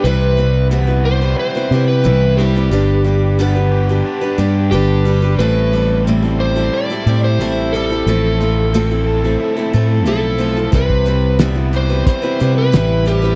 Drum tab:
HH |----------------|----------------|----------------|----------------|
SD |----------------|----------------|----------------|----------------|
BD |----------------|----------------|----------------|----------------|

HH |x-x-x-x-x-x-x-x-|
SD |----o--o----o---|
BD |oo------o-------|